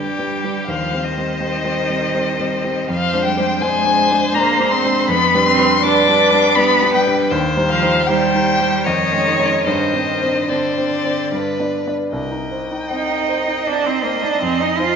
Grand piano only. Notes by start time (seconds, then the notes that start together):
Already playing: F2 G3 D4 B4
0.18 G3 D4 B4
0.44 G3 D4 B4
0.68 D#2
0.92 G3 C4 C5
1.17 G3 C4 C5
1.40 G3 C4 C5
1.65 G3 C4 C5
1.89 G3 C4 C5
2.14 G3 C4 C5
2.40 G3 C4 C5
2.64 G3 C4 C5
2.89 F2
3.13 G#3 D4 C5
3.37 G#3 D4 C5
3.61 G#3 D4 C5
3.85 G#3 D4 C5
4.11 G#3 D4 C5
4.35 G#3 D4 C5
4.59 G#3 D4 C5
4.84 G#3 D4 C5
5.08 F2
5.34 G3 D4 B4
5.58 G3 D4 B4
5.83 G3 D4 B4
6.07 G3 D4 B4
6.32 G3 D4 B4
6.57 G3 D4 B4
6.82 G3 D4 B4
7.07 G3 D4 B4
7.31 D#2
7.56 G3 D#4 C5
7.82 G3 D#4 C5
8.08 G3 D#4 C5
8.34 G3 D#4 C5
8.60 G3 D#4 C5
8.86 F2
9.13 G#3 C#4 C#5
9.39 G#3 C#4 C#5
9.67 G2
9.93 C4 D4 C5
10.22 C4 D4 C5
10.49 C4 D4 C5
10.77 C4 D4 C5
11.04 C4 D4 C5
11.32 G2
11.59 B3 D4 D5
11.87 B3 D4 D5
12.12 C2
12.31 D#4
12.51 C5
12.71 D#4
12.91 C4
13.10 D#4
13.29 C5
13.48 D#4
13.67 C4
13.86 D#4
14.05 C5
14.24 D#4
14.42 F2
14.61 D#4
14.80 C5